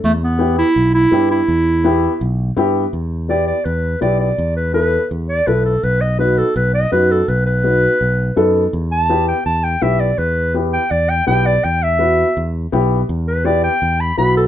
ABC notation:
X:1
M:4/4
L:1/8
Q:1/4=165
K:Em
V:1 name="Clarinet"
A, B,2 E2 E2 E- | E6 z2 | z2 d d B2 d d- | d B B2 z d B A |
B ^d B A B d B A | B B6 z | z a2 g a g e d | B2 z g d g g d |
g e4 z3 | z B d g2 b b A |]
V:2 name="Upright piano"
z2 [B,EG] z3 [B,EG] z | z2 [B,EG] z3 [B,EG] z | z2 [B,EG] z3 [B,EG] z | z2 [B,EA] z3 [B,EA] z |
z2 [B,^DF] z3 [B,DF] z | z2 [B,^DF] z3 [B,DA] z | z2 [B,EG] z3 [B,EG] z | z2 [B,EG] z3 [B,EG] z |
z2 [B,EF] z3 [B,EG] z | z2 [B,EG] z3 [B,EF] z |]
V:3 name="Fingered electric bass" clef=bass
E,,4 B,,,2 G,,2 | E,,4 B,,,2 G,,2 | E,,4 E,,2 B,,,2 | E,,4 E,,2 B,,,2 |
B,,,4 B,,,2 F,,2 | B,,,4 B,,,2 F,,2 | E,,4 E,,2 B,,,2 | E,,4 E,,2 B,,,2 |
E,,4 E,,2 B,,,2 | E,,4 E,,2 B,,,2 |]